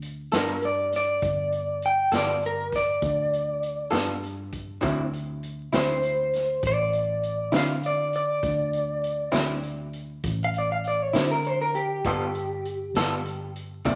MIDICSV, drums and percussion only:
0, 0, Header, 1, 2, 480
1, 0, Start_track
1, 0, Tempo, 601202
1, 974, Time_signature, 12, 3, 24, 8
1, 11140, End_track
2, 0, Start_track
2, 0, Title_t, "Drums"
2, 16, Note_on_c, 9, 42, 64
2, 96, Note_off_c, 9, 42, 0
2, 255, Note_on_c, 9, 42, 77
2, 264, Note_on_c, 9, 38, 99
2, 335, Note_off_c, 9, 42, 0
2, 344, Note_off_c, 9, 38, 0
2, 495, Note_on_c, 9, 42, 59
2, 575, Note_off_c, 9, 42, 0
2, 736, Note_on_c, 9, 42, 56
2, 746, Note_on_c, 9, 38, 29
2, 816, Note_off_c, 9, 42, 0
2, 826, Note_off_c, 9, 38, 0
2, 977, Note_on_c, 9, 36, 99
2, 978, Note_on_c, 9, 42, 73
2, 1056, Note_off_c, 9, 36, 0
2, 1057, Note_off_c, 9, 42, 0
2, 1216, Note_on_c, 9, 42, 59
2, 1295, Note_off_c, 9, 42, 0
2, 1454, Note_on_c, 9, 42, 54
2, 1534, Note_off_c, 9, 42, 0
2, 1693, Note_on_c, 9, 42, 73
2, 1703, Note_on_c, 9, 38, 101
2, 1773, Note_off_c, 9, 42, 0
2, 1783, Note_off_c, 9, 38, 0
2, 1933, Note_on_c, 9, 42, 51
2, 2013, Note_off_c, 9, 42, 0
2, 2175, Note_on_c, 9, 36, 70
2, 2178, Note_on_c, 9, 42, 53
2, 2188, Note_on_c, 9, 38, 29
2, 2255, Note_off_c, 9, 36, 0
2, 2258, Note_off_c, 9, 42, 0
2, 2267, Note_off_c, 9, 38, 0
2, 2412, Note_on_c, 9, 42, 74
2, 2413, Note_on_c, 9, 36, 105
2, 2492, Note_off_c, 9, 42, 0
2, 2493, Note_off_c, 9, 36, 0
2, 2661, Note_on_c, 9, 42, 57
2, 2740, Note_off_c, 9, 42, 0
2, 2896, Note_on_c, 9, 42, 55
2, 2976, Note_off_c, 9, 42, 0
2, 3133, Note_on_c, 9, 42, 77
2, 3143, Note_on_c, 9, 38, 97
2, 3213, Note_off_c, 9, 42, 0
2, 3222, Note_off_c, 9, 38, 0
2, 3380, Note_on_c, 9, 42, 61
2, 3460, Note_off_c, 9, 42, 0
2, 3614, Note_on_c, 9, 36, 68
2, 3618, Note_on_c, 9, 42, 59
2, 3694, Note_off_c, 9, 36, 0
2, 3698, Note_off_c, 9, 42, 0
2, 3853, Note_on_c, 9, 42, 76
2, 3854, Note_on_c, 9, 36, 104
2, 3932, Note_off_c, 9, 42, 0
2, 3934, Note_off_c, 9, 36, 0
2, 4098, Note_on_c, 9, 42, 61
2, 4178, Note_off_c, 9, 42, 0
2, 4334, Note_on_c, 9, 42, 59
2, 4414, Note_off_c, 9, 42, 0
2, 4572, Note_on_c, 9, 42, 80
2, 4582, Note_on_c, 9, 38, 93
2, 4652, Note_off_c, 9, 42, 0
2, 4662, Note_off_c, 9, 38, 0
2, 4810, Note_on_c, 9, 42, 56
2, 4890, Note_off_c, 9, 42, 0
2, 5056, Note_on_c, 9, 42, 57
2, 5065, Note_on_c, 9, 38, 29
2, 5136, Note_off_c, 9, 42, 0
2, 5145, Note_off_c, 9, 38, 0
2, 5293, Note_on_c, 9, 36, 100
2, 5294, Note_on_c, 9, 42, 76
2, 5373, Note_off_c, 9, 36, 0
2, 5374, Note_off_c, 9, 42, 0
2, 5533, Note_on_c, 9, 42, 56
2, 5613, Note_off_c, 9, 42, 0
2, 5775, Note_on_c, 9, 42, 56
2, 5854, Note_off_c, 9, 42, 0
2, 6009, Note_on_c, 9, 42, 69
2, 6019, Note_on_c, 9, 38, 96
2, 6089, Note_off_c, 9, 42, 0
2, 6098, Note_off_c, 9, 38, 0
2, 6252, Note_on_c, 9, 42, 56
2, 6331, Note_off_c, 9, 42, 0
2, 6489, Note_on_c, 9, 42, 51
2, 6569, Note_off_c, 9, 42, 0
2, 6729, Note_on_c, 9, 42, 71
2, 6730, Note_on_c, 9, 36, 100
2, 6809, Note_off_c, 9, 42, 0
2, 6810, Note_off_c, 9, 36, 0
2, 6971, Note_on_c, 9, 42, 57
2, 7051, Note_off_c, 9, 42, 0
2, 7214, Note_on_c, 9, 42, 60
2, 7293, Note_off_c, 9, 42, 0
2, 7449, Note_on_c, 9, 42, 77
2, 7458, Note_on_c, 9, 38, 104
2, 7529, Note_off_c, 9, 42, 0
2, 7538, Note_off_c, 9, 38, 0
2, 7690, Note_on_c, 9, 42, 56
2, 7770, Note_off_c, 9, 42, 0
2, 7928, Note_on_c, 9, 42, 58
2, 8007, Note_off_c, 9, 42, 0
2, 8171, Note_on_c, 9, 42, 79
2, 8174, Note_on_c, 9, 36, 100
2, 8251, Note_off_c, 9, 42, 0
2, 8254, Note_off_c, 9, 36, 0
2, 8414, Note_on_c, 9, 42, 63
2, 8494, Note_off_c, 9, 42, 0
2, 8653, Note_on_c, 9, 42, 60
2, 8733, Note_off_c, 9, 42, 0
2, 8894, Note_on_c, 9, 42, 79
2, 8903, Note_on_c, 9, 38, 102
2, 8974, Note_off_c, 9, 42, 0
2, 8983, Note_off_c, 9, 38, 0
2, 9134, Note_on_c, 9, 42, 59
2, 9214, Note_off_c, 9, 42, 0
2, 9376, Note_on_c, 9, 42, 55
2, 9456, Note_off_c, 9, 42, 0
2, 9615, Note_on_c, 9, 42, 77
2, 9618, Note_on_c, 9, 36, 103
2, 9695, Note_off_c, 9, 42, 0
2, 9698, Note_off_c, 9, 36, 0
2, 9859, Note_on_c, 9, 42, 58
2, 9939, Note_off_c, 9, 42, 0
2, 10101, Note_on_c, 9, 42, 59
2, 10181, Note_off_c, 9, 42, 0
2, 10339, Note_on_c, 9, 42, 73
2, 10349, Note_on_c, 9, 38, 101
2, 10419, Note_off_c, 9, 42, 0
2, 10429, Note_off_c, 9, 38, 0
2, 10582, Note_on_c, 9, 42, 57
2, 10661, Note_off_c, 9, 42, 0
2, 10822, Note_on_c, 9, 42, 56
2, 10902, Note_off_c, 9, 42, 0
2, 11061, Note_on_c, 9, 36, 104
2, 11063, Note_on_c, 9, 42, 74
2, 11140, Note_off_c, 9, 36, 0
2, 11140, Note_off_c, 9, 42, 0
2, 11140, End_track
0, 0, End_of_file